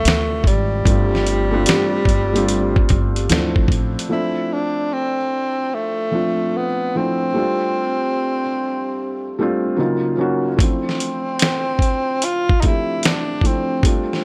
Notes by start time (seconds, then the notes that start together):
Already playing: C3 F3 A3 C4 D4 E4
0.05 D2, snare, closed hi-hat
0.44 G#1 G3, kick, closed hi-hat
0.85 G1 G3 A3 C4 D4, kick, closed hi-hat
0.90 F4
1.15 snare
1.27 closed hi-hat
1.51 G3 A3 C4 D4 F4
1.66 snare, closed hi-hat
2.05 G1, kick, closed hi-hat
2.33 G3 A3 C4 D4 F4, closed hi-hat
2.49 closed hi-hat
2.76 kick
2.89 G1, kick, closed hi-hat
3.16 closed hi-hat
3.29 D2 F3 A3 C4 D4, snare, closed hi-hat
3.33 E4
3.56 kick
3.68 A1, kick, closed hi-hat
3.99 closed hi-hat
4.09 F3 A3 C4 D4 E4
4.53 D4
4.93 C4
5.74 A3
6.11 F3 A3 C4 D4 F4
6.56 B3
6.95 F3 A3 C4 D4 E4
7.34 G3 A3 C4 D4 F4
9.39 G3 A3 C4 D4 F4
9.77 C#3 F#3 A#3 D#4 F4
10.17 F#3 A#3 C#4 D#4 F#4
10.56 E3 A3 C4 D4 E4, kick
10.60 F3 C4, closed hi-hat
10.89 snare
11.00 closed hi-hat
11.39 snare, closed hi-hat
11.79 kick, closed hi-hat
12.22 F4, closed hi-hat
12.49 kick
12.60 F3 A3 C4 D#4, kick, closed hi-hat
12.64 D4 E4 G4
13.03 D4, snare, closed hi-hat
13.41 F3 A3 C4 D4, kick, closed hi-hat
13.46 C4 E4
13.83 G3 A3 C4 D4, kick, closed hi-hat
13.87 F4
14.13 snare